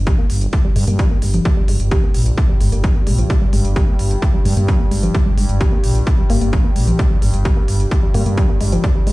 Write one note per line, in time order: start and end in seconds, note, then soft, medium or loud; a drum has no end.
0.00 0.12 G1 medium
0.00 9.12 G2 medium
0.00 9.12 G3 medium
0.07 0.11 G4 medium
0.07 kick loud
0.07 closed hi-hat medium
0.18 0.23 A#3 medium
0.30 0.47 G1 medium
0.30 open hi-hat loud
0.41 closed hi-hat medium
0.53 kick loud
0.53 closed hi-hat medium
0.65 0.67 G3 medium
0.76 0.85 G2 loud
0.76 0.79 G#3 medium
0.76 open hi-hat loud
0.88 1.05 G2 medium
0.88 0.92 A#3 medium
0.88 closed hi-hat medium
0.99 1.03 G3 medium
0.99 kick loud
0.99 closed hi-hat medium
1.11 1.15 A#3 medium
1.22 1.39 G1 loud
1.22 1.25 G#3 medium
1.22 open hi-hat loud
1.34 1.40 F3 medium
1.34 closed hi-hat medium
1.45 1.48 G3 loud
1.45 kick loud
1.45 closed hi-hat medium
1.57 1.60 G3 medium
1.68 1.77 G1 medium
1.68 1.71 G#3 medium
1.68 open hi-hat loud
1.80 1.97 G1 medium
1.80 closed hi-hat medium
1.91 1.96 G4 medium
1.91 kick loud
1.91 closed hi-hat medium
2.03 2.07 A#3 medium
2.14 2.32 A#1 medium
2.14 open hi-hat loud
2.26 closed hi-hat medium
2.38 kick loud
2.38 closed hi-hat medium
2.49 2.52 G3 medium
2.61 2.69 G1 loud
2.61 2.63 G#3 medium
2.61 open hi-hat loud
2.72 2.89 G1 loud
2.72 2.76 A#3 medium
2.72 closed hi-hat medium
2.84 2.88 G3 medium
2.84 kick loud
2.84 closed hi-hat medium
2.95 2.99 A#3 medium
3.07 3.24 A#1 medium
3.07 3.09 G#3 medium
3.07 open hi-hat loud
3.18 3.25 F3 medium
3.18 closed hi-hat medium
3.30 3.32 G3 loud
3.30 kick loud
3.30 closed hi-hat medium
3.42 3.44 G3 medium
3.53 3.62 G1 loud
3.53 3.56 G#3 medium
3.53 open hi-hat loud
3.65 3.82 G1 medium
3.65 closed hi-hat medium
3.76 3.80 G4 medium
3.76 kick loud
3.76 closed hi-hat medium
3.88 3.92 A#3 medium
3.99 4.16 G1 medium
3.99 open hi-hat loud
4.11 closed hi-hat medium
4.22 kick loud
4.22 closed hi-hat medium
4.34 4.36 G3 medium
4.45 4.54 G2 loud
4.45 4.48 G#3 medium
4.45 open hi-hat loud
4.57 4.74 G2 loud
4.57 4.61 A#3 medium
4.57 closed hi-hat medium
4.68 4.73 G3 medium
4.68 kick loud
4.68 closed hi-hat medium
4.80 4.84 A#3 medium
4.91 5.09 G1 loud
4.91 4.94 G#3 medium
4.91 open hi-hat loud
5.03 5.09 F3 medium
5.03 closed hi-hat medium
5.14 5.17 G3 loud
5.14 kick loud
5.14 closed hi-hat medium
5.26 5.29 G3 medium
5.38 5.46 G1 medium
5.38 5.40 G#3 medium
5.38 open hi-hat loud
5.49 5.66 G1 medium
5.49 closed hi-hat medium
5.61 5.65 G4 medium
5.61 kick loud
5.61 closed hi-hat medium
5.72 5.76 A#3 medium
5.84 6.01 A#1 medium
5.84 open hi-hat loud
5.95 closed hi-hat medium
6.07 kick loud
6.07 closed hi-hat medium
6.18 6.21 G3 medium
6.30 6.39 G1 loud
6.30 6.36 A#3 loud
6.30 open hi-hat loud
6.41 6.59 G1 loud
6.41 6.46 A#3 medium
6.41 closed hi-hat medium
6.53 6.57 G3 medium
6.53 kick loud
6.53 closed hi-hat medium
6.64 6.69 A#3 medium
6.76 6.93 A#1 medium
6.76 6.78 G#3 medium
6.76 open hi-hat loud
6.87 6.94 F3 medium
6.87 closed hi-hat medium
6.99 7.02 G3 loud
6.99 kick loud
6.99 closed hi-hat medium
7.10 7.13 G3 medium
7.22 7.31 G1 loud
7.22 7.25 G#3 medium
7.22 open hi-hat loud
7.34 7.51 G1 medium
7.34 closed hi-hat medium
7.45 7.49 G4 medium
7.45 kick loud
7.45 closed hi-hat medium
7.57 7.61 A#3 medium
7.68 7.85 G1 medium
7.68 open hi-hat loud
7.80 closed hi-hat medium
7.91 kick loud
7.91 closed hi-hat medium
8.03 8.05 G3 medium
8.14 8.23 G2 loud
8.14 8.21 A#3 loud
8.14 open hi-hat loud
8.26 8.43 G2 medium
8.26 8.30 A#3 medium
8.26 closed hi-hat medium
8.37 8.42 G3 medium
8.37 kick loud
8.37 closed hi-hat medium
8.49 8.53 A#3 medium
8.61 8.78 G1 loud
8.61 8.63 G#3 medium
8.61 open hi-hat loud
8.72 8.79 F3 medium
8.72 closed hi-hat medium
8.84 8.86 G3 loud
8.84 kick loud
8.84 closed hi-hat medium
8.96 8.98 G3 medium
9.07 9.12 G1 medium
9.07 9.09 G#3 medium
9.07 open hi-hat loud